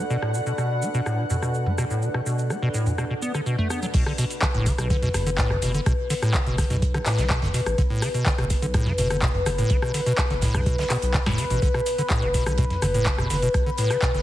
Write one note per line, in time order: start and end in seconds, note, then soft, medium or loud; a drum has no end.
0.00 3.94 D4 medium
0.00 3.94 A4 medium
0.00 3.94 B4 medium
0.00 3.95 D5 medium
0.00 3.94 F#5 medium
0.10 0.17 B2 loud
0.10 cabasa soft
0.22 0.36 A2 medium
0.22 cross-stick medium
0.34 0.41 B2 medium
0.34 cabasa medium
0.46 0.53 B2 medium
0.46 cabasa soft
0.58 0.84 B2 medium
0.58 cross-stick soft
0.58 cabasa soft
0.82 0.89 B3 loud
0.82 cabasa medium
0.94 1.01 B2 loud
0.94 cabasa soft
1.06 1.20 A2 medium
1.06 cross-stick medium
1.06 cabasa soft
1.18 1.25 B2 medium
1.30 1.37 B2 medium
1.30 mid tom medium
1.30 cabasa medium
1.42 1.68 B2 medium
1.42 cross-stick soft
1.42 cabasa soft
1.54 cabasa soft
1.66 1.73 B3 loud
1.66 mid tom medium
1.78 1.85 B2 loud
1.78 cross-stick medium
1.78 cabasa medium
1.90 2.04 A2 medium
1.90 cabasa soft
2.02 2.09 B2 medium
2.02 cabasa soft
2.14 2.21 B2 medium
2.14 cross-stick medium
2.26 2.52 B2 medium
2.26 cabasa medium
2.38 cabasa soft
2.50 2.57 B3 medium
2.50 cross-stick soft
2.50 cabasa soft
2.62 2.69 B2 loud
2.74 2.88 A2 medium
2.74 cabasa medium
2.86 2.93 B2 medium
2.86 mid tom medium
2.86 cabasa soft
2.98 3.05 B2 medium
2.98 cross-stick medium
2.98 cabasa soft
3.10 3.14 B2 medium
3.22 3.32 B3 medium
3.22 cabasa medium
3.34 3.41 D3 medium
3.34 cross-stick soft
3.34 cabasa soft
3.46 3.56 B2 medium
3.46 cabasa soft
3.58 3.68 A3 medium
3.58 mid tom medium
3.70 3.80 B3 medium
3.70 cross-stick medium
3.70 cabasa medium
3.82 3.86 F#3 medium
3.82 cabasa soft
3.94 4.03 B1 loud
3.94 4.04 B2 medium
3.94 14.22 B4 medium
3.94 kick loud
3.94 closed hi-hat loud
3.94 closed hi-hat medium
3.94 crash loud
3.94 cabasa soft
4.06 4.13 D3 medium
4.06 cross-stick medium
4.18 4.25 B2 loud
4.18 closed hi-hat medium
4.18 open hi-hat loud
4.18 cabasa medium
4.30 closed hi-hat medium
4.30 cabasa soft
4.42 4.46 D3 loud
4.42 kick loud
4.42 cross-stick medium
4.42 snare loud
4.42 clap loud
4.42 closed hi-hat medium
4.42 cabasa soft
4.54 4.71 F#1 loud
4.54 4.68 A2 loud
4.54 closed hi-hat soft
4.66 4.73 D3 medium
4.66 kick medium
4.66 closed hi-hat medium
4.66 open hi-hat loud
4.66 cabasa medium
4.78 5.09 B1 loud
4.78 4.88 B2 medium
4.78 cross-stick medium
4.78 closed hi-hat medium
4.78 cabasa soft
4.90 4.97 D3 medium
4.90 kick loud
4.90 closed hi-hat medium
4.90 cabasa soft
5.02 5.09 B2 loud
5.02 snare soft
5.02 closed hi-hat soft
5.02 mid tom medium
5.14 5.57 F#1 medium
5.14 cross-stick medium
5.14 closed hi-hat medium
5.14 mid tom medium
5.14 open hi-hat loud
5.14 cabasa medium
5.26 5.30 D3 loud
5.26 closed hi-hat medium
5.26 cabasa soft
5.38 5.52 A2 loud
5.38 kick loud
5.38 snare loud
5.38 clap loud
5.38 closed hi-hat medium
5.38 cabasa soft
5.50 5.57 D3 medium
5.50 cross-stick medium
5.50 closed hi-hat soft
5.50 mid tom medium
5.62 5.80 F#1 medium
5.62 5.72 B2 medium
5.62 closed hi-hat medium
5.62 open hi-hat loud
5.62 cabasa medium
5.74 5.81 D3 medium
5.74 closed hi-hat medium
5.74 cabasa soft
5.86 5.95 B1 loud
5.86 5.93 B2 loud
5.86 kick loud
5.86 cross-stick medium
5.86 closed hi-hat medium
5.86 cabasa soft
6.10 6.14 D3 loud
6.10 closed hi-hat medium
6.10 open hi-hat loud
6.10 cabasa medium
6.22 6.36 A2 loud
6.22 cross-stick medium
6.22 snare soft
6.22 closed hi-hat medium
6.22 cabasa soft
6.34 6.41 D3 medium
6.34 kick loud
6.34 snare loud
6.34 clap loud
6.34 closed hi-hat medium
6.34 cabasa soft
6.46 6.63 F#1 loud
6.46 6.56 B2 medium
6.46 snare soft
6.46 closed hi-hat soft
6.58 6.65 D3 medium
6.58 kick medium
6.58 cross-stick medium
6.58 closed hi-hat medium
6.58 open hi-hat loud
6.58 cabasa medium
6.70 7.01 B1 loud
6.70 6.77 B2 loud
6.70 snare soft
6.70 closed hi-hat medium
6.70 mid tom medium
6.70 cabasa soft
6.82 kick loud
6.82 closed hi-hat medium
6.82 cabasa soft
6.94 6.98 D3 loud
6.94 cross-stick medium
6.94 closed hi-hat soft
7.06 7.20 A2 loud
7.06 snare loud
7.06 clap medium
7.06 closed hi-hat medium
7.06 open hi-hat loud
7.06 cabasa medium
7.18 7.35 B1 medium
7.18 7.25 D3 medium
7.18 snare loud
7.18 closed hi-hat medium
7.18 cabasa soft
7.30 7.40 B2 medium
7.30 kick loud
7.30 cross-stick medium
7.30 snare medium
7.30 clap loud
7.30 closed hi-hat medium
7.30 cabasa soft
7.42 7.51 F#1 medium
7.42 7.49 D3 medium
7.42 snare loud
7.42 closed hi-hat medium
7.42 mid tom loud
7.54 7.61 B2 loud
7.54 closed hi-hat medium
7.54 open hi-hat loud
7.54 cabasa medium
7.66 7.75 A1 medium
7.66 cross-stick medium
7.66 closed hi-hat medium
7.66 cabasa soft
7.78 7.87 B1 loud
7.78 7.82 D3 loud
7.78 kick loud
7.78 closed hi-hat medium
7.78 cabasa soft
7.90 8.04 A2 loud
8.02 8.09 D3 medium
8.02 cross-stick medium
8.02 closed hi-hat medium
8.02 open hi-hat loud
8.02 cabasa medium
8.14 8.24 B2 medium
8.14 closed hi-hat medium
8.14 cabasa soft
8.26 kick loud
8.26 snare loud
8.26 clap loud
8.26 closed hi-hat medium
8.26 cabasa soft
8.38 8.55 F#1 loud
8.38 8.45 B2 loud
8.38 cross-stick medium
8.38 closed hi-hat soft
8.50 kick medium
8.50 closed hi-hat medium
8.50 open hi-hat loud
8.50 cabasa medium
8.62 8.93 B1 loud
8.62 8.66 D3 loud
8.62 closed hi-hat medium
8.62 cabasa soft
8.74 8.88 A2 loud
8.74 kick loud
8.74 cross-stick medium
8.74 closed hi-hat medium
8.74 cabasa soft
8.86 8.93 D3 medium
8.86 snare soft
8.86 closed hi-hat soft
8.86 mid tom medium
8.98 9.41 F#1 medium
8.98 9.08 B2 medium
8.98 closed hi-hat medium
8.98 mid tom medium
8.98 open hi-hat loud
8.98 cabasa medium
9.10 9.17 D3 medium
9.10 cross-stick medium
9.10 closed hi-hat medium
9.10 cabasa soft
9.22 9.29 B2 loud
9.22 kick loud
9.22 snare loud
9.22 clap loud
9.22 closed hi-hat medium
9.22 cabasa soft
9.34 closed hi-hat soft
9.34 mid tom loud
9.46 9.64 F#1 medium
9.46 9.50 D3 loud
9.46 cross-stick medium
9.46 open hi-hat loud
9.46 cabasa medium
9.58 9.72 A2 loud
9.58 closed hi-hat medium
9.58 cabasa soft
9.70 9.79 B1 loud
9.70 9.77 D3 medium
9.70 kick loud
9.70 closed hi-hat medium
9.70 cabasa soft
9.82 9.92 B2 medium
9.82 cross-stick medium
9.94 10.01 D3 medium
9.94 closed hi-hat medium
9.94 open hi-hat loud
9.94 cabasa medium
10.06 10.13 B2 loud
10.06 snare soft
10.06 closed hi-hat medium
10.06 cabasa soft
10.18 kick loud
10.18 cross-stick medium
10.18 snare loud
10.18 clap loud
10.18 closed hi-hat medium
10.18 cabasa soft
10.30 10.47 F#1 loud
10.30 10.34 D3 loud
10.30 snare soft
10.30 closed hi-hat soft
10.41 10.56 A2 loud
10.41 kick medium
10.41 snare loud
10.41 open hi-hat medium
10.41 open hi-hat loud
10.41 cabasa medium
10.54 10.85 B1 loud
10.54 10.61 D3 medium
10.54 kick medium
10.54 cross-stick medium
10.54 closed hi-hat medium
10.54 mid tom medium
10.54 cabasa soft
10.66 10.76 B2 medium
10.66 kick loud
10.66 closed hi-hat medium
10.66 cabasa soft
10.78 10.85 D3 medium
10.78 snare loud
10.78 closed hi-hat soft
10.78 open hi-hat medium
10.90 10.97 B2 loud
10.90 cross-stick medium
10.90 clap medium
10.90 open hi-hat loud
10.90 cabasa medium
11.02 11.19 B1 medium
11.02 closed hi-hat medium
11.02 cabasa soft
11.14 11.18 D3 loud
11.14 kick loud
11.14 snare loud
11.14 clap loud
11.14 closed hi-hat medium
11.14 open hi-hat medium
11.14 cabasa soft
11.26 11.35 F#1 medium
11.26 11.40 A2 loud
11.26 cross-stick medium
11.26 snare medium
11.26 mid tom loud
11.38 11.45 D3 medium
11.38 closed hi-hat medium
11.38 open hi-hat loud
11.38 cabasa medium
11.50 11.59 A1 medium
11.50 11.60 B2 medium
11.50 closed hi-hat medium
11.50 cabasa soft
11.62 11.71 B1 loud
11.62 11.69 D3 medium
11.62 kick loud
11.62 closed hi-hat medium
11.62 closed hi-hat loud
11.62 cabasa soft
11.74 11.81 B2 loud
11.74 cross-stick medium
11.86 closed hi-hat medium
11.86 open hi-hat loud
11.86 cabasa medium
11.98 12.02 D3 loud
11.98 closed hi-hat soft
11.98 cabasa soft
12.10 12.24 A2 loud
12.10 kick loud
12.10 cross-stick medium
12.10 snare loud
12.10 clap loud
12.10 closed hi-hat medium
12.10 cabasa soft
12.22 12.39 F#1 loud
12.22 12.29 D3 medium
12.22 closed hi-hat soft
12.34 12.44 B2 medium
12.34 kick medium
12.34 closed hi-hat medium
12.34 open hi-hat loud
12.34 cabasa medium
12.46 12.77 B1 loud
12.46 12.53 D3 medium
12.46 cross-stick medium
12.46 closed hi-hat medium
12.46 cabasa soft
12.58 12.65 B2 loud
12.58 kick loud
12.58 closed hi-hat medium
12.58 cabasa soft
12.70 snare soft
12.70 closed hi-hat soft
12.70 mid tom medium
12.82 13.25 F#1 medium
12.82 12.86 D3 loud
12.82 cross-stick medium
12.82 closed hi-hat medium
12.82 mid tom medium
12.82 open hi-hat loud
12.82 cabasa medium
12.94 13.08 A2 loud
12.94 closed hi-hat medium
12.94 cabasa soft
13.06 13.13 D3 medium
13.06 kick loud
13.06 snare loud
13.06 clap loud
13.06 closed hi-hat medium
13.06 cabasa soft
13.18 13.28 B2 medium
13.18 cross-stick medium
13.18 closed hi-hat soft
13.18 mid tom medium
13.30 13.48 F#1 medium
13.30 13.37 D3 medium
13.30 closed hi-hat medium
13.30 open hi-hat loud
13.30 cabasa medium
13.42 13.49 B2 loud
13.42 closed hi-hat medium
13.42 cabasa soft
13.54 13.63 B1 loud
13.54 kick loud
13.54 cross-stick medium
13.54 closed hi-hat medium
13.54 cabasa soft
13.66 13.70 D3 loud
13.78 13.92 A2 loud
13.78 closed hi-hat medium
13.78 open hi-hat loud
13.78 cabasa medium
13.90 13.97 D3 medium
13.90 cross-stick medium
13.90 snare soft
13.90 closed hi-hat medium
13.90 cabasa soft
14.02 14.12 B2 medium
14.02 kick loud
14.02 snare loud
14.02 clap loud
14.02 closed hi-hat medium
14.02 cabasa soft
14.14 14.22 F#1 loud
14.14 14.21 D3 medium
14.14 snare soft
14.14 closed hi-hat soft